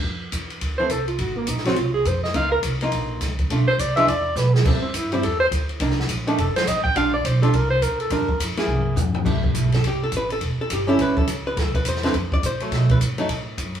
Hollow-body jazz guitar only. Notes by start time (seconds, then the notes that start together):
0.80 E3 A3 C4
1.66 F#3 C4 F4
2.34 A#3 D#4 F4
2.82 A#3 D#4 F4
3.51 A3 D4 F4
3.97 E3 G#3 D4 F4
4.67 G3 C4 E4
5.13 G3 C4 E4
5.81 D#3 A#3 D4
6.27 D#3 A3 D4
6.96 G3 D4 F4
7.42 G3 D4 F4
8.11 G3 D4 F4 A#4
8.58 A#3 E4 G#4
9.25 G3 A3 E4
9.75 A4
9.87 G4
10.03 A4
10.17 B4
10.32 A4
10.61 A4
10.73 G4
10.87 G3 C#4 E4 A4
11.02 B4
11.18 A4
11.47 B4
11.60 A4
11.76 B4
11.89 C5
12.04 D3 A3 C4 F4 B4
12.34 D5
12.46 C5
12.61 F#3 A3
12.74 D#5
12.91 B4
13.18 F#3 A3 D#4